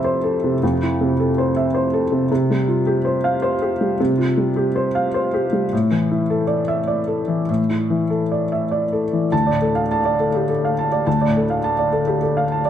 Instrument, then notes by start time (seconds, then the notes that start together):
felt piano
Already playing: F2 C3 E4 A4 C5 E5
0.04 C5
0.24 A4
0.44 C3
0.63 F2
0.82 E4
1.01 C3
1.20 A4
1.38 C5
1.56 E5
1.74 C5
1.93 A4
2.12 C3
2.31 C3
2.50 G3
2.68 F4
2.87 G4
3.05 C5
3.24 F5
3.42 C5
3.62 G4
3.81 G3
4.00 C3
4.18 F4
4.37 G3
4.56 G4
4.76 C5
4.95 F5
5.14 C5
5.34 G4
5.53 G3
5.73 A2
5.91 E3
6.11 E4
6.30 A4
6.47 D5
6.68 E5
6.88 D5
7.07 A4
7.28 E3
7.49 A2
7.69 E4
7.90 E3
8.10 A4
8.32 D5
8.52 E5
8.71 D5
8.92 A4
9.13 E3
9.32 D2 A5
9.47 A2 D5
9.61 A4
9.75 F5
9.91 A5
10.05 D5
10.19 A4
10.34 G4
10.49 A4
10.65 F5
10.78 A5
10.92 D5
11.07 D2 A5
11.21 D5
11.26 A2
11.37 A4
11.50 F5
11.64 A5
11.79 D5
11.92 A4
12.07 G4
12.22 A4
12.37 F5
12.52 A5
12.65 D5